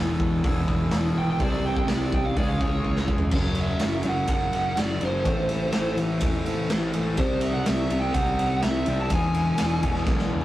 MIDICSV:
0, 0, Header, 1, 6, 480
1, 0, Start_track
1, 0, Tempo, 481541
1, 1405, Time_signature, 4, 2, 24, 8
1, 10415, End_track
2, 0, Start_track
2, 0, Title_t, "Lead electric guitar"
2, 0, Program_c, 0, 29
2, 1174, Note_on_c, 0, 79, 98
2, 1283, Note_off_c, 0, 79, 0
2, 1295, Note_on_c, 0, 79, 78
2, 1405, Note_on_c, 0, 74, 76
2, 1407, Note_off_c, 0, 79, 0
2, 1490, Note_off_c, 0, 74, 0
2, 1502, Note_on_c, 0, 74, 85
2, 1630, Note_off_c, 0, 74, 0
2, 1649, Note_on_c, 0, 79, 92
2, 1750, Note_off_c, 0, 79, 0
2, 1762, Note_on_c, 0, 79, 78
2, 1870, Note_on_c, 0, 74, 83
2, 1880, Note_off_c, 0, 79, 0
2, 1982, Note_off_c, 0, 74, 0
2, 1994, Note_on_c, 0, 74, 88
2, 2116, Note_off_c, 0, 74, 0
2, 2133, Note_on_c, 0, 79, 91
2, 2240, Note_on_c, 0, 77, 94
2, 2246, Note_off_c, 0, 79, 0
2, 2356, Note_off_c, 0, 77, 0
2, 2356, Note_on_c, 0, 74, 97
2, 2475, Note_off_c, 0, 74, 0
2, 2479, Note_on_c, 0, 77, 94
2, 2598, Note_off_c, 0, 77, 0
2, 2606, Note_on_c, 0, 73, 94
2, 3071, Note_off_c, 0, 73, 0
2, 3348, Note_on_c, 0, 73, 79
2, 3583, Note_off_c, 0, 73, 0
2, 3596, Note_on_c, 0, 76, 100
2, 4068, Note_on_c, 0, 78, 100
2, 4075, Note_off_c, 0, 76, 0
2, 4294, Note_off_c, 0, 78, 0
2, 4306, Note_on_c, 0, 78, 98
2, 4772, Note_on_c, 0, 74, 90
2, 4790, Note_off_c, 0, 78, 0
2, 5016, Note_off_c, 0, 74, 0
2, 5028, Note_on_c, 0, 72, 78
2, 5937, Note_off_c, 0, 72, 0
2, 7161, Note_on_c, 0, 72, 80
2, 7392, Note_on_c, 0, 76, 83
2, 7410, Note_off_c, 0, 72, 0
2, 7508, Note_off_c, 0, 76, 0
2, 7508, Note_on_c, 0, 78, 78
2, 7641, Note_off_c, 0, 78, 0
2, 7647, Note_on_c, 0, 76, 89
2, 7975, Note_off_c, 0, 76, 0
2, 7979, Note_on_c, 0, 79, 95
2, 8107, Note_off_c, 0, 79, 0
2, 8111, Note_on_c, 0, 78, 101
2, 8589, Note_off_c, 0, 78, 0
2, 8593, Note_on_c, 0, 76, 88
2, 8933, Note_off_c, 0, 76, 0
2, 8974, Note_on_c, 0, 81, 95
2, 9081, Note_off_c, 0, 81, 0
2, 9107, Note_on_c, 0, 80, 95
2, 10415, Note_off_c, 0, 80, 0
2, 10415, End_track
3, 0, Start_track
3, 0, Title_t, "Steel-string acoustic guitar"
3, 0, Program_c, 1, 25
3, 3299, Note_on_c, 1, 42, 70
3, 3309, Note_on_c, 1, 49, 83
3, 3309, Note_on_c, 1, 54, 82
3, 3314, Note_on_c, 1, 61, 91
3, 3318, Note_on_c, 1, 58, 82
3, 3321, Note_on_c, 1, 66, 87
3, 3527, Note_off_c, 1, 66, 0
3, 3531, Note_off_c, 1, 61, 0
3, 3537, Note_off_c, 1, 58, 0
3, 3539, Note_on_c, 1, 66, 65
3, 3543, Note_on_c, 1, 61, 61
3, 3545, Note_off_c, 1, 54, 0
3, 3549, Note_on_c, 1, 58, 55
3, 3557, Note_on_c, 1, 54, 52
3, 3761, Note_off_c, 1, 42, 0
3, 3768, Note_off_c, 1, 49, 0
3, 3773, Note_on_c, 1, 42, 78
3, 3775, Note_off_c, 1, 54, 0
3, 3775, Note_off_c, 1, 58, 0
3, 3779, Note_off_c, 1, 61, 0
3, 3780, Note_on_c, 1, 49, 81
3, 3784, Note_off_c, 1, 66, 0
3, 3787, Note_on_c, 1, 54, 80
3, 3787, Note_on_c, 1, 58, 88
3, 3791, Note_on_c, 1, 61, 92
3, 3796, Note_on_c, 1, 66, 87
3, 4013, Note_off_c, 1, 66, 0
3, 4020, Note_off_c, 1, 61, 0
3, 4025, Note_on_c, 1, 66, 68
3, 4030, Note_off_c, 1, 58, 0
3, 4032, Note_on_c, 1, 61, 60
3, 4037, Note_off_c, 1, 54, 0
3, 4042, Note_on_c, 1, 58, 59
3, 4049, Note_on_c, 1, 54, 57
3, 4269, Note_off_c, 1, 42, 0
3, 4273, Note_off_c, 1, 49, 0
3, 4498, Note_off_c, 1, 66, 0
3, 4505, Note_off_c, 1, 61, 0
3, 4510, Note_on_c, 1, 66, 74
3, 4513, Note_off_c, 1, 58, 0
3, 4515, Note_off_c, 1, 54, 0
3, 4517, Note_on_c, 1, 61, 63
3, 4525, Note_on_c, 1, 58, 61
3, 4527, Note_on_c, 1, 54, 59
3, 4751, Note_off_c, 1, 54, 0
3, 4760, Note_off_c, 1, 58, 0
3, 4763, Note_off_c, 1, 61, 0
3, 4763, Note_on_c, 1, 54, 70
3, 4768, Note_off_c, 1, 66, 0
3, 4772, Note_on_c, 1, 58, 64
3, 4775, Note_on_c, 1, 61, 77
3, 4780, Note_on_c, 1, 66, 83
3, 5230, Note_off_c, 1, 54, 0
3, 5234, Note_off_c, 1, 58, 0
3, 5236, Note_off_c, 1, 61, 0
3, 5238, Note_off_c, 1, 66, 0
3, 5242, Note_on_c, 1, 45, 93
3, 5244, Note_on_c, 1, 52, 86
3, 5251, Note_on_c, 1, 57, 86
3, 5252, Note_on_c, 1, 60, 86
3, 5254, Note_on_c, 1, 64, 95
3, 5262, Note_on_c, 1, 69, 86
3, 5479, Note_off_c, 1, 69, 0
3, 5484, Note_off_c, 1, 64, 0
3, 5487, Note_off_c, 1, 60, 0
3, 5491, Note_on_c, 1, 69, 69
3, 5495, Note_off_c, 1, 57, 0
3, 5496, Note_on_c, 1, 64, 67
3, 5499, Note_on_c, 1, 60, 58
3, 5507, Note_on_c, 1, 57, 55
3, 5719, Note_off_c, 1, 45, 0
3, 5721, Note_off_c, 1, 52, 0
3, 5726, Note_off_c, 1, 60, 0
3, 5728, Note_off_c, 1, 57, 0
3, 5729, Note_off_c, 1, 69, 0
3, 5731, Note_off_c, 1, 64, 0
3, 5731, Note_on_c, 1, 45, 82
3, 5732, Note_on_c, 1, 52, 84
3, 5738, Note_on_c, 1, 60, 92
3, 5740, Note_on_c, 1, 57, 86
3, 5741, Note_on_c, 1, 69, 91
3, 5743, Note_on_c, 1, 64, 87
3, 5952, Note_off_c, 1, 69, 0
3, 5957, Note_off_c, 1, 64, 0
3, 5964, Note_on_c, 1, 69, 69
3, 5966, Note_off_c, 1, 60, 0
3, 5967, Note_off_c, 1, 57, 0
3, 5969, Note_on_c, 1, 64, 67
3, 5978, Note_on_c, 1, 60, 58
3, 5979, Note_on_c, 1, 57, 52
3, 6208, Note_off_c, 1, 45, 0
3, 6209, Note_off_c, 1, 52, 0
3, 6424, Note_off_c, 1, 69, 0
3, 6429, Note_off_c, 1, 64, 0
3, 6436, Note_on_c, 1, 69, 70
3, 6438, Note_off_c, 1, 60, 0
3, 6441, Note_on_c, 1, 64, 68
3, 6442, Note_off_c, 1, 57, 0
3, 6450, Note_on_c, 1, 60, 68
3, 6453, Note_on_c, 1, 57, 59
3, 6666, Note_off_c, 1, 57, 0
3, 6668, Note_off_c, 1, 60, 0
3, 6677, Note_off_c, 1, 64, 0
3, 6678, Note_on_c, 1, 57, 68
3, 6680, Note_on_c, 1, 60, 74
3, 6681, Note_off_c, 1, 69, 0
3, 6689, Note_on_c, 1, 64, 79
3, 6693, Note_on_c, 1, 69, 75
3, 7147, Note_off_c, 1, 57, 0
3, 7148, Note_off_c, 1, 60, 0
3, 7153, Note_off_c, 1, 64, 0
3, 7155, Note_off_c, 1, 69, 0
3, 10415, End_track
4, 0, Start_track
4, 0, Title_t, "Distorted electric guitar"
4, 0, Program_c, 2, 30
4, 0, Note_on_c, 2, 40, 88
4, 0, Note_on_c, 2, 47, 99
4, 0, Note_on_c, 2, 52, 90
4, 0, Note_on_c, 2, 56, 100
4, 0, Note_on_c, 2, 59, 90
4, 0, Note_on_c, 2, 64, 95
4, 417, Note_off_c, 2, 40, 0
4, 424, Note_off_c, 2, 47, 0
4, 429, Note_on_c, 2, 40, 79
4, 430, Note_off_c, 2, 52, 0
4, 434, Note_off_c, 2, 56, 0
4, 436, Note_off_c, 2, 59, 0
4, 439, Note_off_c, 2, 64, 0
4, 447, Note_on_c, 2, 47, 86
4, 450, Note_on_c, 2, 52, 80
4, 458, Note_on_c, 2, 56, 81
4, 460, Note_on_c, 2, 59, 80
4, 470, Note_on_c, 2, 64, 88
4, 1382, Note_off_c, 2, 40, 0
4, 1392, Note_off_c, 2, 47, 0
4, 1393, Note_off_c, 2, 52, 0
4, 1397, Note_off_c, 2, 56, 0
4, 1397, Note_on_c, 2, 48, 85
4, 1398, Note_off_c, 2, 59, 0
4, 1403, Note_off_c, 2, 64, 0
4, 1404, Note_on_c, 2, 55, 83
4, 1410, Note_on_c, 2, 60, 94
4, 1420, Note_on_c, 2, 64, 97
4, 1422, Note_on_c, 2, 67, 97
4, 1433, Note_on_c, 2, 72, 105
4, 2347, Note_off_c, 2, 48, 0
4, 2350, Note_off_c, 2, 55, 0
4, 2353, Note_off_c, 2, 60, 0
4, 2358, Note_off_c, 2, 64, 0
4, 2359, Note_off_c, 2, 67, 0
4, 2360, Note_on_c, 2, 49, 93
4, 2364, Note_off_c, 2, 72, 0
4, 2370, Note_on_c, 2, 56, 93
4, 2380, Note_on_c, 2, 61, 102
4, 2387, Note_on_c, 2, 65, 97
4, 2394, Note_on_c, 2, 68, 103
4, 3307, Note_on_c, 2, 42, 83
4, 3308, Note_off_c, 2, 49, 0
4, 3313, Note_off_c, 2, 56, 0
4, 3318, Note_off_c, 2, 61, 0
4, 3321, Note_on_c, 2, 49, 90
4, 3322, Note_off_c, 2, 65, 0
4, 3323, Note_on_c, 2, 54, 100
4, 3325, Note_off_c, 2, 68, 0
4, 3777, Note_off_c, 2, 42, 0
4, 3789, Note_on_c, 2, 42, 76
4, 3791, Note_off_c, 2, 49, 0
4, 3794, Note_off_c, 2, 54, 0
4, 3803, Note_on_c, 2, 49, 79
4, 3806, Note_on_c, 2, 54, 96
4, 4022, Note_off_c, 2, 42, 0
4, 4029, Note_off_c, 2, 49, 0
4, 4034, Note_on_c, 2, 42, 75
4, 4037, Note_off_c, 2, 54, 0
4, 4041, Note_on_c, 2, 49, 79
4, 4049, Note_on_c, 2, 54, 74
4, 4252, Note_off_c, 2, 42, 0
4, 4263, Note_off_c, 2, 49, 0
4, 4264, Note_on_c, 2, 42, 91
4, 4269, Note_off_c, 2, 54, 0
4, 4274, Note_on_c, 2, 49, 104
4, 4281, Note_on_c, 2, 54, 100
4, 4742, Note_off_c, 2, 42, 0
4, 4754, Note_on_c, 2, 42, 90
4, 4758, Note_off_c, 2, 49, 0
4, 4763, Note_off_c, 2, 54, 0
4, 4770, Note_on_c, 2, 49, 90
4, 4774, Note_on_c, 2, 54, 91
4, 4977, Note_off_c, 2, 42, 0
4, 4986, Note_off_c, 2, 49, 0
4, 4989, Note_on_c, 2, 42, 85
4, 4992, Note_off_c, 2, 54, 0
4, 4998, Note_on_c, 2, 49, 83
4, 5004, Note_on_c, 2, 54, 84
4, 5222, Note_off_c, 2, 42, 0
4, 5226, Note_on_c, 2, 45, 92
4, 5227, Note_off_c, 2, 49, 0
4, 5230, Note_off_c, 2, 54, 0
4, 5233, Note_on_c, 2, 52, 99
4, 5237, Note_on_c, 2, 57, 98
4, 5701, Note_off_c, 2, 45, 0
4, 5713, Note_on_c, 2, 45, 75
4, 5720, Note_off_c, 2, 57, 0
4, 5721, Note_off_c, 2, 52, 0
4, 5725, Note_on_c, 2, 52, 80
4, 5732, Note_on_c, 2, 57, 86
4, 5945, Note_off_c, 2, 45, 0
4, 5957, Note_on_c, 2, 45, 87
4, 5958, Note_off_c, 2, 57, 0
4, 5962, Note_off_c, 2, 52, 0
4, 5966, Note_on_c, 2, 52, 79
4, 5970, Note_on_c, 2, 57, 83
4, 6192, Note_off_c, 2, 45, 0
4, 6204, Note_on_c, 2, 45, 91
4, 6205, Note_off_c, 2, 52, 0
4, 6208, Note_off_c, 2, 57, 0
4, 6209, Note_on_c, 2, 52, 89
4, 6220, Note_on_c, 2, 57, 94
4, 6667, Note_off_c, 2, 45, 0
4, 6679, Note_on_c, 2, 45, 87
4, 6680, Note_off_c, 2, 52, 0
4, 6681, Note_off_c, 2, 57, 0
4, 6684, Note_on_c, 2, 52, 93
4, 6693, Note_on_c, 2, 57, 91
4, 6907, Note_off_c, 2, 45, 0
4, 6917, Note_off_c, 2, 57, 0
4, 6919, Note_on_c, 2, 45, 86
4, 6923, Note_off_c, 2, 52, 0
4, 6927, Note_on_c, 2, 52, 82
4, 6929, Note_on_c, 2, 57, 97
4, 7138, Note_off_c, 2, 45, 0
4, 7142, Note_on_c, 2, 48, 97
4, 7153, Note_off_c, 2, 52, 0
4, 7153, Note_off_c, 2, 57, 0
4, 7157, Note_on_c, 2, 55, 98
4, 7165, Note_on_c, 2, 60, 92
4, 7617, Note_off_c, 2, 48, 0
4, 7629, Note_off_c, 2, 60, 0
4, 7629, Note_on_c, 2, 48, 78
4, 7630, Note_off_c, 2, 55, 0
4, 7641, Note_on_c, 2, 60, 87
4, 7642, Note_on_c, 2, 55, 85
4, 7863, Note_off_c, 2, 48, 0
4, 7870, Note_off_c, 2, 55, 0
4, 7875, Note_on_c, 2, 48, 80
4, 7878, Note_off_c, 2, 60, 0
4, 7882, Note_on_c, 2, 55, 92
4, 7890, Note_on_c, 2, 60, 88
4, 8099, Note_off_c, 2, 48, 0
4, 8105, Note_off_c, 2, 55, 0
4, 8111, Note_on_c, 2, 48, 92
4, 8112, Note_off_c, 2, 60, 0
4, 8117, Note_on_c, 2, 55, 105
4, 8124, Note_on_c, 2, 60, 104
4, 8586, Note_off_c, 2, 48, 0
4, 8593, Note_off_c, 2, 55, 0
4, 8597, Note_off_c, 2, 60, 0
4, 8598, Note_on_c, 2, 48, 81
4, 8605, Note_on_c, 2, 55, 98
4, 8609, Note_on_c, 2, 60, 104
4, 8828, Note_off_c, 2, 48, 0
4, 8832, Note_off_c, 2, 55, 0
4, 8840, Note_on_c, 2, 48, 82
4, 8844, Note_on_c, 2, 55, 88
4, 8845, Note_off_c, 2, 60, 0
4, 8857, Note_on_c, 2, 60, 99
4, 9068, Note_off_c, 2, 48, 0
4, 9070, Note_off_c, 2, 55, 0
4, 9075, Note_on_c, 2, 40, 92
4, 9076, Note_off_c, 2, 60, 0
4, 9089, Note_on_c, 2, 47, 101
4, 9092, Note_on_c, 2, 52, 106
4, 9546, Note_off_c, 2, 40, 0
4, 9554, Note_off_c, 2, 47, 0
4, 9558, Note_on_c, 2, 40, 83
4, 9560, Note_off_c, 2, 52, 0
4, 9566, Note_on_c, 2, 47, 85
4, 9571, Note_on_c, 2, 52, 88
4, 9797, Note_off_c, 2, 40, 0
4, 9801, Note_off_c, 2, 47, 0
4, 9809, Note_on_c, 2, 40, 79
4, 9813, Note_on_c, 2, 47, 84
4, 9814, Note_off_c, 2, 52, 0
4, 9826, Note_on_c, 2, 52, 94
4, 10033, Note_off_c, 2, 40, 0
4, 10036, Note_off_c, 2, 47, 0
4, 10041, Note_off_c, 2, 52, 0
4, 10045, Note_on_c, 2, 40, 94
4, 10048, Note_on_c, 2, 47, 108
4, 10053, Note_on_c, 2, 52, 115
4, 10415, Note_off_c, 2, 40, 0
4, 10415, Note_off_c, 2, 47, 0
4, 10415, Note_off_c, 2, 52, 0
4, 10415, End_track
5, 0, Start_track
5, 0, Title_t, "Fingered electric bass"
5, 0, Program_c, 3, 33
5, 0, Note_on_c, 3, 28, 98
5, 192, Note_off_c, 3, 28, 0
5, 202, Note_on_c, 3, 28, 88
5, 435, Note_off_c, 3, 28, 0
5, 683, Note_on_c, 3, 28, 86
5, 907, Note_off_c, 3, 28, 0
5, 913, Note_on_c, 3, 28, 93
5, 1144, Note_off_c, 3, 28, 0
5, 1150, Note_on_c, 3, 32, 81
5, 1389, Note_off_c, 3, 32, 0
5, 1395, Note_on_c, 3, 36, 91
5, 1621, Note_off_c, 3, 36, 0
5, 1627, Note_on_c, 3, 36, 89
5, 1852, Note_off_c, 3, 36, 0
5, 1858, Note_on_c, 3, 36, 96
5, 2103, Note_off_c, 3, 36, 0
5, 2123, Note_on_c, 3, 36, 86
5, 2356, Note_off_c, 3, 36, 0
5, 2360, Note_on_c, 3, 37, 90
5, 2594, Note_off_c, 3, 37, 0
5, 2601, Note_on_c, 3, 37, 85
5, 2829, Note_off_c, 3, 37, 0
5, 2835, Note_on_c, 3, 37, 88
5, 3065, Note_off_c, 3, 37, 0
5, 3071, Note_on_c, 3, 29, 82
5, 3307, Note_off_c, 3, 29, 0
5, 3313, Note_on_c, 3, 30, 85
5, 3718, Note_off_c, 3, 30, 0
5, 3798, Note_on_c, 3, 30, 89
5, 4001, Note_off_c, 3, 30, 0
5, 4054, Note_on_c, 3, 30, 83
5, 4250, Note_off_c, 3, 30, 0
5, 4271, Note_on_c, 3, 30, 84
5, 4477, Note_off_c, 3, 30, 0
5, 4518, Note_on_c, 3, 30, 81
5, 4721, Note_off_c, 3, 30, 0
5, 4762, Note_on_c, 3, 30, 82
5, 4964, Note_off_c, 3, 30, 0
5, 5000, Note_on_c, 3, 30, 79
5, 5202, Note_off_c, 3, 30, 0
5, 5245, Note_on_c, 3, 33, 92
5, 5645, Note_off_c, 3, 33, 0
5, 5737, Note_on_c, 3, 33, 89
5, 5932, Note_off_c, 3, 33, 0
5, 5976, Note_on_c, 3, 33, 81
5, 6172, Note_off_c, 3, 33, 0
5, 6204, Note_on_c, 3, 28, 80
5, 6404, Note_off_c, 3, 28, 0
5, 6450, Note_on_c, 3, 45, 79
5, 6648, Note_off_c, 3, 45, 0
5, 6686, Note_on_c, 3, 33, 83
5, 6886, Note_off_c, 3, 33, 0
5, 6940, Note_on_c, 3, 33, 86
5, 7160, Note_off_c, 3, 33, 0
5, 7160, Note_on_c, 3, 36, 86
5, 7563, Note_off_c, 3, 36, 0
5, 7649, Note_on_c, 3, 36, 89
5, 7847, Note_off_c, 3, 36, 0
5, 7876, Note_on_c, 3, 36, 82
5, 8080, Note_off_c, 3, 36, 0
5, 8116, Note_on_c, 3, 36, 88
5, 8320, Note_off_c, 3, 36, 0
5, 8374, Note_on_c, 3, 36, 81
5, 8570, Note_off_c, 3, 36, 0
5, 8608, Note_on_c, 3, 36, 90
5, 8807, Note_off_c, 3, 36, 0
5, 8843, Note_on_c, 3, 36, 80
5, 9043, Note_off_c, 3, 36, 0
5, 9073, Note_on_c, 3, 28, 90
5, 9478, Note_off_c, 3, 28, 0
5, 9572, Note_on_c, 3, 28, 94
5, 9769, Note_off_c, 3, 28, 0
5, 9803, Note_on_c, 3, 28, 90
5, 10003, Note_off_c, 3, 28, 0
5, 10039, Note_on_c, 3, 35, 90
5, 10241, Note_off_c, 3, 35, 0
5, 10309, Note_on_c, 3, 40, 88
5, 10415, Note_off_c, 3, 40, 0
5, 10415, End_track
6, 0, Start_track
6, 0, Title_t, "Drums"
6, 199, Note_on_c, 9, 36, 89
6, 298, Note_off_c, 9, 36, 0
6, 440, Note_on_c, 9, 36, 112
6, 440, Note_on_c, 9, 46, 50
6, 540, Note_off_c, 9, 36, 0
6, 540, Note_off_c, 9, 46, 0
6, 678, Note_on_c, 9, 36, 81
6, 777, Note_off_c, 9, 36, 0
6, 908, Note_on_c, 9, 46, 50
6, 911, Note_on_c, 9, 38, 105
6, 1008, Note_off_c, 9, 46, 0
6, 1011, Note_off_c, 9, 38, 0
6, 1386, Note_on_c, 9, 46, 53
6, 1396, Note_on_c, 9, 36, 104
6, 1486, Note_off_c, 9, 46, 0
6, 1495, Note_off_c, 9, 36, 0
6, 1759, Note_on_c, 9, 36, 83
6, 1859, Note_off_c, 9, 36, 0
6, 1872, Note_on_c, 9, 46, 59
6, 1875, Note_on_c, 9, 38, 115
6, 1972, Note_off_c, 9, 46, 0
6, 1975, Note_off_c, 9, 38, 0
6, 2001, Note_on_c, 9, 38, 31
6, 2100, Note_off_c, 9, 38, 0
6, 2118, Note_on_c, 9, 36, 91
6, 2217, Note_off_c, 9, 36, 0
6, 2359, Note_on_c, 9, 36, 102
6, 2363, Note_on_c, 9, 46, 54
6, 2459, Note_off_c, 9, 36, 0
6, 2463, Note_off_c, 9, 46, 0
6, 2599, Note_on_c, 9, 36, 79
6, 2699, Note_off_c, 9, 36, 0
6, 2836, Note_on_c, 9, 36, 61
6, 2935, Note_off_c, 9, 36, 0
6, 2956, Note_on_c, 9, 38, 64
6, 3056, Note_off_c, 9, 38, 0
6, 3071, Note_on_c, 9, 36, 82
6, 3171, Note_off_c, 9, 36, 0
6, 3172, Note_on_c, 9, 43, 88
6, 3272, Note_off_c, 9, 43, 0
6, 3302, Note_on_c, 9, 49, 104
6, 3309, Note_on_c, 9, 36, 102
6, 3402, Note_off_c, 9, 49, 0
6, 3408, Note_off_c, 9, 36, 0
6, 3537, Note_on_c, 9, 51, 69
6, 3636, Note_off_c, 9, 51, 0
6, 3783, Note_on_c, 9, 51, 92
6, 3786, Note_on_c, 9, 38, 110
6, 3882, Note_off_c, 9, 51, 0
6, 3885, Note_off_c, 9, 38, 0
6, 4014, Note_on_c, 9, 51, 66
6, 4113, Note_off_c, 9, 51, 0
6, 4261, Note_on_c, 9, 51, 88
6, 4270, Note_on_c, 9, 36, 101
6, 4360, Note_off_c, 9, 51, 0
6, 4369, Note_off_c, 9, 36, 0
6, 4514, Note_on_c, 9, 51, 61
6, 4614, Note_off_c, 9, 51, 0
6, 4754, Note_on_c, 9, 51, 87
6, 4757, Note_on_c, 9, 38, 98
6, 4854, Note_off_c, 9, 51, 0
6, 4857, Note_off_c, 9, 38, 0
6, 4992, Note_on_c, 9, 51, 64
6, 5091, Note_off_c, 9, 51, 0
6, 5236, Note_on_c, 9, 51, 85
6, 5237, Note_on_c, 9, 36, 104
6, 5336, Note_off_c, 9, 51, 0
6, 5337, Note_off_c, 9, 36, 0
6, 5470, Note_on_c, 9, 51, 72
6, 5569, Note_off_c, 9, 51, 0
6, 5706, Note_on_c, 9, 51, 98
6, 5709, Note_on_c, 9, 38, 104
6, 5806, Note_off_c, 9, 51, 0
6, 5809, Note_off_c, 9, 38, 0
6, 5955, Note_on_c, 9, 51, 72
6, 6055, Note_off_c, 9, 51, 0
6, 6186, Note_on_c, 9, 51, 97
6, 6195, Note_on_c, 9, 36, 102
6, 6285, Note_off_c, 9, 51, 0
6, 6294, Note_off_c, 9, 36, 0
6, 6438, Note_on_c, 9, 51, 69
6, 6537, Note_off_c, 9, 51, 0
6, 6676, Note_on_c, 9, 51, 85
6, 6679, Note_on_c, 9, 38, 102
6, 6775, Note_off_c, 9, 51, 0
6, 6778, Note_off_c, 9, 38, 0
6, 6911, Note_on_c, 9, 51, 74
6, 7011, Note_off_c, 9, 51, 0
6, 7149, Note_on_c, 9, 51, 89
6, 7156, Note_on_c, 9, 36, 107
6, 7249, Note_off_c, 9, 51, 0
6, 7256, Note_off_c, 9, 36, 0
6, 7385, Note_on_c, 9, 51, 72
6, 7485, Note_off_c, 9, 51, 0
6, 7635, Note_on_c, 9, 51, 99
6, 7638, Note_on_c, 9, 38, 117
6, 7735, Note_off_c, 9, 51, 0
6, 7738, Note_off_c, 9, 38, 0
6, 7878, Note_on_c, 9, 51, 72
6, 7978, Note_off_c, 9, 51, 0
6, 8117, Note_on_c, 9, 51, 85
6, 8118, Note_on_c, 9, 36, 105
6, 8217, Note_off_c, 9, 36, 0
6, 8217, Note_off_c, 9, 51, 0
6, 8363, Note_on_c, 9, 51, 66
6, 8463, Note_off_c, 9, 51, 0
6, 8597, Note_on_c, 9, 51, 82
6, 8600, Note_on_c, 9, 38, 104
6, 8696, Note_off_c, 9, 51, 0
6, 8699, Note_off_c, 9, 38, 0
6, 8832, Note_on_c, 9, 51, 67
6, 8931, Note_off_c, 9, 51, 0
6, 9071, Note_on_c, 9, 51, 92
6, 9076, Note_on_c, 9, 36, 105
6, 9171, Note_off_c, 9, 51, 0
6, 9176, Note_off_c, 9, 36, 0
6, 9314, Note_on_c, 9, 51, 67
6, 9414, Note_off_c, 9, 51, 0
6, 9547, Note_on_c, 9, 51, 103
6, 9550, Note_on_c, 9, 38, 112
6, 9647, Note_off_c, 9, 51, 0
6, 9650, Note_off_c, 9, 38, 0
6, 9796, Note_on_c, 9, 51, 75
6, 9799, Note_on_c, 9, 36, 86
6, 9896, Note_off_c, 9, 51, 0
6, 9898, Note_off_c, 9, 36, 0
6, 9915, Note_on_c, 9, 38, 33
6, 10014, Note_off_c, 9, 38, 0
6, 10029, Note_on_c, 9, 38, 61
6, 10035, Note_on_c, 9, 36, 113
6, 10129, Note_off_c, 9, 38, 0
6, 10135, Note_off_c, 9, 36, 0
6, 10154, Note_on_c, 9, 38, 62
6, 10253, Note_off_c, 9, 38, 0
6, 10269, Note_on_c, 9, 48, 68
6, 10369, Note_off_c, 9, 48, 0
6, 10379, Note_on_c, 9, 48, 66
6, 10415, Note_off_c, 9, 48, 0
6, 10415, End_track
0, 0, End_of_file